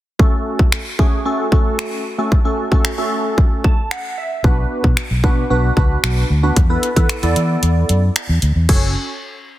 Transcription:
0.19 A3 C#4 F#4 A4, kick
0.59 kick
0.72 finger snap
0.99 A3 C#4 F#4 G#4, kick
1.25 A3 C#4 F#4 A4
1.52 A3 C#4 F#4 A4, kick
1.79 finger snap
2.18 A3 C#4 F#4 A4
2.32 kick
2.45 A3 C#4 F#4 A4
2.71 A3 C#4 F#4 A4, kick
2.85 finger snap
2.98 A3 C#4 F#4 A4
3.38 kick
3.64 A5, kick
3.91 F#5, finger snap
4.18 E5
4.44 B1 B3 D4 F#4 B4, kick
4.84 B2, kick
4.97 finger snap
5.11 B1
5.24 B2 B3 D4 F#4 B4, kick
5.50 B1 B3 D4 F#4 B4
5.77 C#2 B3 D4 F#4 B4, kick
6.03 B1, finger snap
6.30 D2
6.43 B3 D4 F#4 B4
6.56 E2, kick, closed hi-hat
6.70 B3 E4 A4 B4
6.83 closed hi-hat
6.96 E3 B3 E4 A4 B4, kick, closed hi-hat
7.09 finger snap, closed hi-hat
7.23 E2 B3 E4 A4 D5, closed hi-hat
7.36 E3, closed hi-hat
7.63 E2, closed hi-hat
7.89 F#2, closed hi-hat
8.16 finger snap, closed hi-hat
8.29 E2
8.42 D2, closed hi-hat
8.56 E2
8.69 F#1 C#4 F#4 A4 C#5, kick, crash

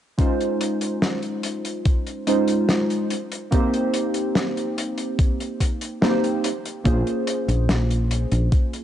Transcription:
0.18 G#3 C#4 D#4 F4 C5, kick, closed hi-hat
0.41 closed hi-hat
0.61 closed hi-hat
0.81 closed hi-hat
1.02 snare, closed hi-hat
1.23 closed hi-hat
1.43 closed hi-hat
1.65 closed hi-hat
1.85 kick, closed hi-hat
2.07 closed hi-hat
2.27 G#3 C#4 D#4 F4 C5, closed hi-hat
2.48 closed hi-hat
2.69 snare, closed hi-hat
2.90 closed hi-hat
3.10 closed hi-hat
3.32 closed hi-hat
3.51 A#3 C4 D#4 G4 C5, kick, closed hi-hat
3.74 closed hi-hat
3.94 closed hi-hat
4.14 closed hi-hat
4.35 snare, closed hi-hat
4.57 closed hi-hat
4.78 closed hi-hat
4.98 closed hi-hat
5.19 kick, closed hi-hat
5.40 closed hi-hat
5.61 kick, closed hi-hat
5.81 closed hi-hat
6.01 A#3 C4 D#4 G4 C5, snare, closed hi-hat
6.24 closed hi-hat
6.44 closed hi-hat
6.65 closed hi-hat
6.84 A#1 A#3 C#4 F4 G#4 C5, kick, closed hi-hat
7.07 closed hi-hat
7.27 closed hi-hat
7.48 A#1, closed hi-hat
7.69 snare, closed hi-hat
7.91 closed hi-hat
8.11 closed hi-hat
8.32 A#1, closed hi-hat
8.52 kick, closed hi-hat
8.73 closed hi-hat

